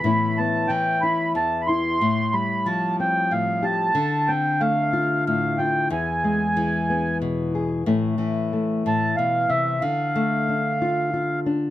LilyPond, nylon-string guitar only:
\new Staff \with { instrumentName = "Nylon-string guitar" } { \clef bass \time 6/8 \key a \minor \tempo 4. = 61 << { <e b e'>8 b4 e'4 e'8 | r8 g4 c'4 g'8 | r8 c'4 f'4 f'8 | r8 gis4 b4 gis'8 |
<e a>4 a2 | r4 d'8 f'8 f'8 d'8 | } \\ { a,4 e4 e,4 | a,4 f4 a,4 | d4 a4 a,4 | e,4 e4 b,4 |
a,8 e4 a,8 b,8 c8 | d8 a2~ a8 | } >> }